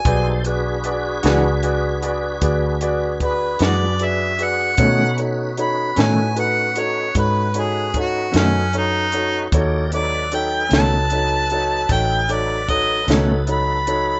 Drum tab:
HH |xxxxxxxxxxxx|xxxxxxxxxxxx|xxxxxxxxxxxx|
SD |---o-----o--|---o-----o--|---o--o--o--|
BD |o-----o-o---|o-----o-o---|o-----o-o---|